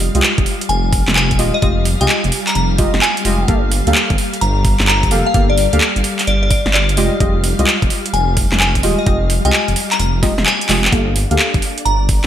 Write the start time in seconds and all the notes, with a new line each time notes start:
Already playing: G3 F5
0.00 open hi-hat
0.15 C2 G#3 F4 G4 D#5, closed hi-hat
0.23 clap
0.38 F1, kick, closed hi-hat
0.46 open hi-hat
0.61 closed hi-hat
0.69 F1 G#5, closed hi-hat
0.93 kick, open hi-hat
1.08 F1, clap, snare
1.16 G#5, clap
1.31 kick, closed hi-hat
1.39 D#1 G#3 F4 G4 D#5, open hi-hat
1.54 D#5
1.62 F1 G#3 F4 G4 D#5, kick, closed hi-hat
1.85 open hi-hat
2.01 C2 G#3 F4 G4 D#5 G#5, closed hi-hat
2.09 clap
2.24 F1, closed hi-hat
2.32 open hi-hat
2.47 A#5, clap, closed hi-hat
2.55 F1 A#5, closed hi-hat
2.78 G#3 F4 G4 D#5, kick, open hi-hat
2.94 F1, snare
3.02 G#5, clap
3.17 closed hi-hat
3.25 F1 G#3 F4 G4 D#5, open hi-hat
3.48 G1 A#3 G4 A4 F5, kick, closed hi-hat
3.72 open hi-hat
3.87 D2 A#3 G4 A4 F5, closed hi-hat
3.95 clap
4.10 G1, kick, closed hi-hat
4.18 open hi-hat
4.33 closed hi-hat
4.41 G1 A#5, closed hi-hat
4.65 kick, open hi-hat
4.80 G1, clap, snare
4.88 A#5, clap
5.03 kick, closed hi-hat
5.11 F1 A#3 G4 A4 F5, open hi-hat
5.26 F5
5.34 G1 A#3 G4 A4 F5, kick, closed hi-hat
5.50 D5
5.58 open hi-hat
5.73 D2 A#3 G4 A4 F5, closed hi-hat
5.81 clap
5.96 G1, closed hi-hat
6.04 open hi-hat
6.19 clap, closed hi-hat
6.27 G1 D5, closed hi-hat
6.43 D5
6.51 D5, kick, open hi-hat
6.66 G1, snare
6.74 D5, clap
6.89 closed hi-hat
6.97 F1 G#3 F4 G4 D#5, open hi-hat
7.20 F1 G#3 F4 G4 D#5, kick, closed hi-hat
7.44 open hi-hat
7.59 C2 G#3 F4 G4 D#5, closed hi-hat
7.67 clap
7.82 F1, kick, closed hi-hat
7.90 open hi-hat
8.06 closed hi-hat
8.13 F1 G#5, closed hi-hat
8.37 kick, open hi-hat
8.52 F1, clap, snare
8.60 G#5, clap
8.75 kick, closed hi-hat
8.83 D#1 G#3 F4 G4 D#5, open hi-hat
8.99 D#5
9.06 F1 G#3 F4 G4 D#5, kick, closed hi-hat
9.30 open hi-hat
9.45 C2 G#3 F4 G4 D#5 G#5, closed hi-hat
9.53 clap
9.68 F1, closed hi-hat
9.76 open hi-hat
9.91 A#5, clap, closed hi-hat
9.99 F1 A#5, closed hi-hat
10.23 G#3 F4 G4 D#5, kick, snare, open hi-hat
10.38 F1, snare
10.46 G#5, clap
10.61 closed hi-hat
10.69 F1 G#3 F4 G4 D#5, clap, open hi-hat
10.85 clap
10.92 G1 A#3 D4 G4 A4 D5 F5, kick, closed hi-hat
11.16 open hi-hat
11.31 D2 A#3 G4 A4 F5, closed hi-hat
11.39 clap
11.54 G1, kick, closed hi-hat
11.62 open hi-hat
11.78 closed hi-hat
11.85 G1 A#5, closed hi-hat
12.09 kick, open hi-hat